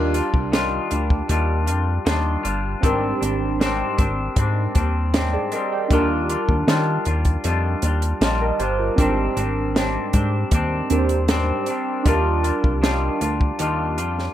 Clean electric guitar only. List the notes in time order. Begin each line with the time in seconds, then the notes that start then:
Already playing: D#3 G3 D4 F4
0.14 G3 D4 F4
0.52 D#3 G3 D4 F4
0.90 G3 D4 F4
1.28 D#3 G3 D4 F4
1.66 G3 D4 F4
2.05 D#3 G3 D4 F4
2.43 G3 D4 F4
2.82 G#2 G3 C4 D4
3.21 G3 C4 D4
3.60 G#2 G3 C4 D4
3.97 G3 C4 D4
4.36 G#2 G3 C4 D4
4.75 G3 C4 D4
5.14 G#2 G3 C4 D4
5.52 G3 C4 D4
5.91 D#3 G3 D4 F4
6.29 G3 D4 F4
6.68 D#3 G3 D4 F4
7.07 G3 D4 F4
7.44 D#3 G3 D4 F4
7.83 G3 D4 F4
8.21 D#3 G3 D4 F4
8.59 G3 D4 F4
8.98 G#2 G3 C4 D4
9.36 G3 C4 D4
9.75 G#2 G3 C4 D4
10.13 G3 C4 D4
10.52 G#2 G3 C4 D4
10.90 G3 C4 D4
11.29 G#2 G3 C4 D4
11.68 G3 C4 D4
12.05 D#3 G3 D4 F4
12.43 G3 D4 F4
12.82 D#3 G3 D4 F4
13.21 G3 D4 F4
13.59 D#3 G3 D4 F4
13.98 G3 D4 F4